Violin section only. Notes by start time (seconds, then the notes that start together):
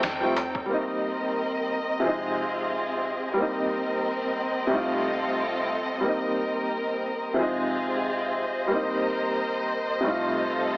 Already playing: D#4 A4 G5
0.70 C4 A#4 D#5
2.03 C4 F4 G#4
3.36 A#4 D#5
4.70 F4 A4
6.03 A#4
7.36 F4 G#4 C5 D#5
8.70 A#4
10.04 F4 A4